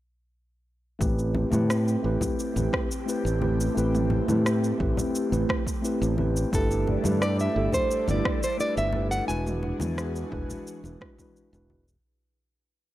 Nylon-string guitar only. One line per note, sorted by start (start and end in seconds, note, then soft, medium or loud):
6.55 7.21 A4 medium
7.22 7.40 D5 medium
7.41 7.74 E5 medium
7.74 8.06 C5 medium
8.11 8.44 D5 medium
8.44 8.60 C5 medium
8.61 8.78 D5 medium
8.78 9.11 E5 medium
9.11 9.28 F#5 loud
9.28 11.31 G#5 loud